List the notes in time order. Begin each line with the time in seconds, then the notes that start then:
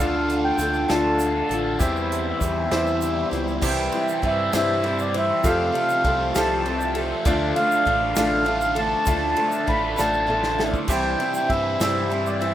Already playing: D4 A4 D5 F5
0.00 D2 D3 A3 D4 F4 A4 F5
0.29 closed hi-hat
0.45 G5
0.58 D2 A3 D4 F4 A4, closed hi-hat, shaker
0.73 shaker
0.88 D2 D3 A3 D4 F4 A4 D5 F5 A5, snare, closed hi-hat
1.19 closed hi-hat, shaker
1.49 A1 D4 F4 A4, closed hi-hat
1.78 E2 E3 G3 C4 E4 G4 C5 E5, kick, closed hi-hat, shaker
1.82 G4
1.96 shaker
2.12 closed hi-hat
2.41 E2 G3 C4 E4 C5, kick, closed hi-hat, shaker
2.71 E2 E3 G3 C4 E4 G4 C5 E5, snare, closed hi-hat
2.87 shaker
3.01 closed hi-hat, shaker
3.31 C#2 C4 E4 C5, closed hi-hat
3.48 shaker
3.61 C2 C3 E3 G3 C4 E4 G4 C5 E5, kick, crash, shaker
3.67 G5
3.92 G3 C4 E4 C5, ride
4.09 shaker
4.13 G5
4.22 G2 E3 G3 C4 E4 C5, kick, ride
4.27 E5
4.53 G2 C3 E3 G3 C4 E4 G4 C5 E5, snare, ride, shaker
4.57 E5
4.82 E3 G3 C4, ride
4.87 E4 C5
4.99 D5, shaker
5.14 G3 C4 E4 C5 E5, ride
5.42 F2 C3 F3 G3 A3 C4 F4 G4 A4 F5, kick, ride, shaker
5.46 G4 A4 F5
5.72 C4 G4 A4, ride
5.89 shaker
6.04 C2 F3 G3 A3 C4 F4 G4 A4, kick, ride
6.34 C2 F2 C3 F3 G3 A3 C4 F4 G4 A4 C5 A5, snare, ride, shaker
6.65 F3 G3 A3 C4 F4 G4 A4, ride
6.81 shaker
6.95 C4 G4 A4, ride
7.25 D2 D3 F3 A3 D4 F4 A4 D5, kick, ride, shaker
7.56 A3 D4 A4 F5, ride
7.71 shaker
7.85 A1 D3 A3 D4 F4 A4, kick, ride
8.16 A1 D3 F3 A3 D4 F4 A4 D5 F5, snare, ride, shaker
8.45 D3 A3 D4 A4, ride
8.50 F4
8.61 shaker
8.75 A3 D4 A4 A5, ride
9.06 D2 D3 F3 A3 D4 F4 A4 D5 E5, kick, ride, shaker
9.36 A3 D4 A4, ride
9.52 shaker
9.67 A1 D3 A3 D4 F4 A4 B5, kick, ride
9.96 A1 D3 F3 A3 D4 F4 A4 D5 E5 A5, snare, shaker
10.13 shaker
10.27 D3 A3 D4 F4 A4, mid tom
10.43 snare
10.59 A3 D4 E4 A4, snare
10.74 kick, shaker
10.88 C2 C3 E3 G3 C4 E4 G4 C5 E5, kick, crash, shaker
10.92 G5
11.20 G3 C4 E4 C5, ride
11.34 G5, shaker
11.49 G2 E3 G3 C4 E4 E5, kick, ride
11.53 C5
11.80 G2 C3 E3 G3 C4 E4 G4 C5 D5 E5, snare, ride, shaker
12.10 E3 G3 C4 E4 C5, ride
12.26 D5, shaker
12.40 G3 C4 E4 C5 E5, ride